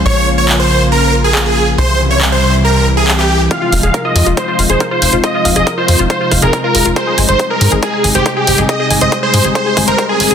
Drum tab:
HH |----------------|----------------|x-oxx-oxx-oxx-ox|x-oxx-oxx-oxx-ox|
CP |----x-------x---|----x-------xx--|----------------|----------------|
BD |----------------|----------------|o---o---o---o---|o---o---o-o-o---|

HH |x-oxx-oxx-oxx-ox|x-oxx-oxx-oxx-ox|
CP |----------------|----------------|
BD |o---o---o---o---|o---o---o-o-o---|